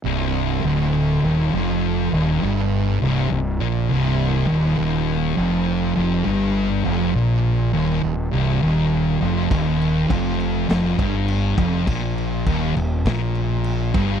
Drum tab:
CC |--------|--------|--------|--------|
SD |--------|--------|--------|--------|
BD |--------|--------|--------|--------|

CC |xxxxxxxx|xxxxxxxx|
SD |----o---|----o--o|
BD |o-o--o-o|o-o-o--o|